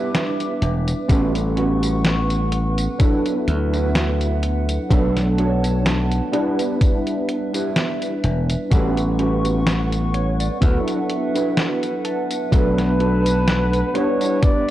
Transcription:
Already playing: tine electric piano G3 B3 D4 E4 B4, clean electric guitar D4 E4 G4 B4, ambient pad B4 E5 D6
0.15 snare, closed hi-hat, tambourine
0.40 closed hi-hat, tambourine
0.62 slap bass E1, closed hi-hat
0.88 closed hi-hat, tambourine
1.08 slap bass A1, tine electric piano G3 B3 C#4 A4 F#5, clean electric guitar C#4 F#4 G4 B4, ambient pad B4 F#5 C#6, kick, closed hi-hat, tambourine
1.35 closed hi-hat, tambourine
1.56 clean electric guitar C#4 F#4 G4 B4, closed hi-hat
1.83 closed hi-hat, tambourine
2.05 snare, closed hi-hat, tambourine
2.30 closed hi-hat, tambourine
2.52 muted clean electric guitar stroke, closed hi-hat
2.78 closed hi-hat, tambourine
2.98 tine electric piano F#3 B3 D4 E4 A4, clean electric guitar D4 E4 F#4 B4, ambient pad E5 F#5, kick, closed hi-hat, tambourine
3.26 closed hi-hat, tambourine
3.48 slap bass D2, closed hi-hat
3.73 clean electric guitar D4 E4 F#4 B4, closed hi-hat, tambourine
3.95 snare, closed hi-hat, tambourine
4.21 closed hi-hat, tambourine
4.43 closed hi-hat
4.69 closed hi-hat, tambourine
4.89 slap bass B1, tine electric piano F#3 A3 B3 D4 A4, clean electric guitar D4 F#4 A4 B4, ambient pad A5, kick, closed hi-hat, tambourine
5.17 snare, closed hi-hat, tambourine
5.38 clean electric guitar D4 F#4 A4 C#5, closed hi-hat
5.64 closed hi-hat, tambourine
5.86 snare, closed hi-hat, tambourine
6.11 closed hi-hat, tambourine
6.32 tine electric piano G3 B3 D4 E4 B4, clean electric guitar D4 E4 G4 B4, ambient pad B4 E5, closed hi-hat
6.59 closed hi-hat, tambourine
6.81 kick, closed hi-hat, tambourine
7.07 closed hi-hat, tambourine
7.29 closed hi-hat
7.53 clean electric guitar D4 E4 G4 B4, closed hi-hat, tambourine
7.76 snare, closed hi-hat, tambourine
8.02 closed hi-hat, tambourine
8.24 slap bass E1, closed hi-hat
8.50 closed hi-hat, tambourine
8.70 slap bass A1, tine electric piano G3 B3 C#4 A4 F#5, clean electric guitar C#4 F#4 G4 B4, ambient pad F#5 C#6, kick, closed hi-hat, tambourine
8.97 closed hi-hat, tambourine
9.18 clean electric guitar C#4 F#4 G4 B4, closed hi-hat
9.45 closed hi-hat, tambourine
9.67 snare, closed hi-hat, tambourine
9.93 closed hi-hat, tambourine
10.14 clean electric guitar C#5, muted clean electric guitar stroke, closed hi-hat
10.40 clean electric guitar D5, closed hi-hat, tambourine
10.61 slap bass D2, tine electric piano F#3 B3 D4 E4 A4, clean electric guitar D4 E4 F#4 B4 E5, ambient pad E5, kick, closed hi-hat, tambourine
10.88 clean electric guitar F#5, closed hi-hat, tambourine
11.10 closed hi-hat
11.34 clean electric guitar D4 E4 F#4 B4 G5, closed hi-hat, tambourine
11.57 clean electric guitar A5, snare, closed hi-hat, tambourine
11.83 closed hi-hat, tambourine
12.05 clean electric guitar A5, closed hi-hat
12.31 closed hi-hat, tambourine
12.51 slap bass B1, tine electric piano F#3 A3 B3 D4 A4, clean electric guitar D4 F#4 A4 B4, flugelhorn B4, ambient pad A5, kick, closed hi-hat, tambourine
12.78 snare, closed hi-hat, tambourine
12.99 clean electric guitar D4 F#4 A4 B4, closed hi-hat
13.26 closed hi-hat, tambourine
13.48 snare, closed hi-hat, tambourine
13.73 closed hi-hat, tambourine
13.94 tine electric piano G3 B3 D4 E4 B4, clean electric guitar D4 E4 G4 B4, flugelhorn C#5, ambient pad E5, closed hi-hat
14.21 closed hi-hat, tambourine
14.42 flugelhorn D5, kick, closed hi-hat, tambourine

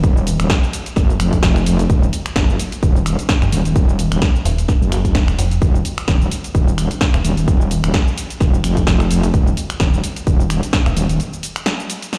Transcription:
Already playing: wobble bass D#1
0.04 kick, closed hi-hat, shaker
0.17 shaker
0.27 open hi-hat, shaker
0.40 wobble bass D#1, finger snap, closed hi-hat, shaker
0.50 kick, snare, closed hi-hat, shaker
0.64 shaker
0.73 open hi-hat, shaker
0.86 closed hi-hat, shaker
0.96 wobble bass F#1, kick, snare, closed hi-hat, shaker
1.10 shaker
1.20 wobble bass F1, finger snap, open hi-hat, shaker
1.33 kick, closed hi-hat, shaker
1.43 wobble bass F1, kick, snare, closed hi-hat, shaker
1.56 finger snap, shaker
1.66 open hi-hat, shaker
1.79 closed hi-hat, shaker
1.90 wobble bass D#1, kick, closed hi-hat, shaker
2.03 shaker
2.13 open hi-hat, shaker
2.26 finger snap, closed hi-hat, shaker
2.36 wobble bass F#1, kick, snare, closed hi-hat, shaker
2.50 shaker
2.59 open hi-hat, shaker
2.72 closed hi-hat, shaker
2.83 wobble bass D#1, kick, closed hi-hat, shaker
2.96 shaker
3.06 finger snap, open hi-hat, shaker
3.19 closed hi-hat, shaker
3.29 kick, snare, closed hi-hat, shaker
3.42 fm bass F#1, finger snap, shaker
3.52 wobble bass D#1, open hi-hat, shaker
3.65 wobble bass D#1, closed hi-hat, shaker
3.76 kick, closed hi-hat, shaker
3.89 shaker
3.99 open hi-hat, shaker
4.12 wobble bass D#1, finger snap, closed hi-hat, shaker
4.22 kick, snare, closed hi-hat, shaker
4.36 shaker
4.45 fm bass D#1, open hi-hat, shaker
4.58 closed hi-hat, shaker
4.68 kick, snare, closed hi-hat, shaker
4.81 wobble bass F#1, shaker
4.92 finger snap, open hi-hat, shaker
5.05 kick, closed hi-hat, shaker
5.15 fm bass D#1, kick, snare, closed hi-hat, shaker
5.28 finger snap, shaker
5.38 fm bass F1, open hi-hat, shaker
5.51 closed hi-hat, shaker
5.62 wobble bass D#1, kick, closed hi-hat, shaker
5.75 shaker
5.85 open hi-hat, shaker
5.98 finger snap, closed hi-hat, shaker
6.08 wobble bass D#1, kick, snare, closed hi-hat, shaker
6.22 shaker
6.31 open hi-hat, shaker
6.44 closed hi-hat, shaker
6.55 wobble bass D#1, kick, closed hi-hat, shaker
6.68 shaker
6.78 finger snap, open hi-hat, shaker
6.91 closed hi-hat, shaker
7.01 kick, snare, closed hi-hat, shaker
7.14 fm bass D#1, finger snap, shaker
7.24 wobble bass D#1, open hi-hat, shaker
7.37 wobble bass D#1, closed hi-hat, shaker
7.48 kick, closed hi-hat, shaker
7.61 shaker
7.71 open hi-hat, shaker
7.84 wobble bass D#1, finger snap, closed hi-hat, shaker
7.94 kick, snare, closed hi-hat, shaker
8.08 shaker
8.18 open hi-hat, shaker
8.30 closed hi-hat, shaker
8.40 wobble bass D#1, kick, snare, closed hi-hat, shaker
8.54 shaker
8.64 wobble bass F1, finger snap, open hi-hat, shaker
8.77 kick, closed hi-hat, shaker
8.87 wobble bass F1, kick, snare, closed hi-hat, shaker
9.00 finger snap, shaker
9.11 open hi-hat, shaker
9.23 closed hi-hat, shaker
9.34 wobble bass D#1, kick, closed hi-hat, shaker
9.47 shaker
9.57 open hi-hat, shaker
9.70 finger snap, closed hi-hat, shaker
9.80 wobble bass D#1, kick, snare, closed hi-hat, shaker
9.94 shaker
10.04 open hi-hat, shaker
10.16 closed hi-hat, shaker
10.27 wobble bass D#1, kick, closed hi-hat, shaker
10.40 shaker
10.50 finger snap, open hi-hat, shaker
10.63 closed hi-hat, shaker
10.73 kick, snare, closed hi-hat, shaker
10.86 fm bass D#1, finger snap, shaker
10.97 wobble bass D#1, open hi-hat, shaker
11.09 wobble bass D#1, closed hi-hat, shaker
11.20 closed hi-hat, shaker
11.33 shaker
11.43 open hi-hat, shaker
11.56 finger snap, closed hi-hat, shaker
11.66 snare, closed hi-hat, shaker
11.80 shaker
11.90 open hi-hat, shaker
12.02 closed hi-hat, shaker
12.13 snare, closed hi-hat, shaker

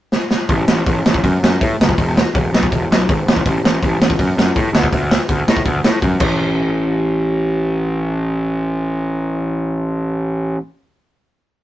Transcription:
0.12 snare
0.31 snare
0.49 picked electric bass A1, kick, open hi-hat
0.68 picked electric bass A1, snare
0.86 picked electric bass A1, kick, open hi-hat
1.06 picked electric bass A1, snare
1.14 kick
1.24 picked electric bass F#2, kick, open hi-hat
1.43 picked electric bass F#2, snare
1.61 picked electric bass A2, kick, open hi-hat
1.80 picked electric bass F#1, snare
1.89 kick
1.98 picked electric bass E1, kick, open hi-hat
2.17 snare
2.34 picked electric bass E1, kick, open hi-hat
2.53 picked electric bass B1, snare
2.63 kick
2.72 picked electric bass E1, kick, open hi-hat
2.91 picked electric bass B1, snare
3.09 picked electric bass G#1, kick, open hi-hat
3.27 picked electric bass A1, snare
3.36 kick
3.46 picked electric bass A1, kick, open hi-hat
3.64 picked electric bass A1, snare
3.83 picked electric bass A1, kick, open hi-hat
4.00 picked electric bass A1, snare
4.10 kick
4.19 picked electric bass F#2, kick, open hi-hat
4.37 picked electric bass F#2, snare
4.56 picked electric bass A2, kick, open hi-hat
4.73 picked electric bass D2, snare
4.83 kick
4.93 picked electric bass D2, kick, open hi-hat
5.11 snare
5.29 picked electric bass D2, kick, open hi-hat
5.48 picked electric bass A2, snare
5.57 kick
5.65 picked electric bass D2, kick, open hi-hat
5.84 picked electric bass A2, snare
6.02 picked electric bass F#2, kick, open hi-hat
6.20 picked electric bass A1, kick, crash

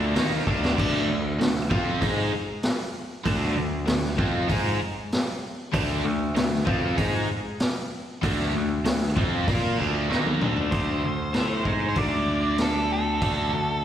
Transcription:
Already playing: picked electric bass D2, overdriven electric guitar D3 A3 D4
0.15 picked electric bass D#2, overdriven electric guitar D#3 A#3 D#4, snare, open hi-hat
0.46 picked electric bass D2, overdriven electric guitar D3 A3 D4, kick
0.65 snare
0.78 picked electric bass D2, overdriven electric guitar D3 A3 D4, kick, crash
0.95 snare
1.08 picked electric bass D2, overdriven electric guitar D3 A3
1.40 picked electric bass D2, overdriven electric guitar D3 A3, snare, open hi-hat
1.56 snare
1.70 picked electric bass F2, overdriven electric guitar F3 C4 F4, kick
2.02 picked electric bass G#2, overdriven electric guitar G#3 D#4 G#4, kick, open hi-hat
2.63 snare, open hi-hat
3.25 picked electric bass D2, overdriven electric guitar D3 A3 D4, kick, open hi-hat
3.41 snare
3.57 picked electric bass D2, overdriven electric guitar D3 A3
3.86 picked electric bass D2, overdriven electric guitar D3 A3, snare, open hi-hat
4.05 snare
4.17 picked electric bass F2, overdriven electric guitar F3 C4 F4, kick
4.47 picked electric bass G#2, overdriven electric guitar G#3 D#4 G#4, kick, open hi-hat
5.12 snare, open hi-hat
5.72 picked electric bass D2, overdriven electric guitar D3 A3 D4, kick, open hi-hat
6.04 picked electric bass D2, overdriven electric guitar D3 A3
6.35 picked electric bass D2, overdriven electric guitar D3 A3, snare, open hi-hat
6.53 snare
6.66 picked electric bass F2, overdriven electric guitar F3 C4 F4, kick
6.96 picked electric bass G#2, overdriven electric guitar G#3 D#4 G#4, kick, open hi-hat
7.60 snare, open hi-hat
8.22 picked electric bass D2, overdriven electric guitar D3 A3 D4, kick, open hi-hat
8.39 snare
8.54 picked electric bass D2, overdriven electric guitar D3 A3
8.85 picked electric bass D2, overdriven electric guitar D3 A3, snare, open hi-hat
9.02 snare
9.16 picked electric bass F2, overdriven electric guitar F3 C4 F4, kick
9.47 picked electric bass A#2, overdriven electric guitar A#3 F4 A#4, kick, open hi-hat
9.78 picked electric bass D2, overdriven electric guitar D3 A3 D4
10.09 picked electric bass D#2, overdriven electric guitar D#3 A#3 D#4, snare
10.26 high tom
10.41 picked electric bass D2, overdriven electric guitar D3 A3 D4, mid tom
10.57 floor tom
10.71 picked electric bass D2, overdriven electric guitar D3 A3 D4, lead electric guitar C5, kick, open hi-hat
11.03 picked electric bass D2, overdriven electric guitar D3 A3
11.33 picked electric bass A2, overdriven electric guitar A3 E4 A4, snare, open hi-hat
11.65 picked electric bass G#2, overdriven electric guitar G#3 D#4 G#4, kick
11.89 lead electric guitar C5
11.95 picked electric bass D2, overdriven electric guitar D3 A3 D4, lead electric guitar D5, kick, open hi-hat
12.58 lead electric guitar A4, snare, open hi-hat
12.93 lead electric guitar A4
13.21 picked electric bass D2, overdriven electric guitar D3 A3 D4, kick, open hi-hat
13.53 picked electric bass D2, overdriven electric guitar D3 A3

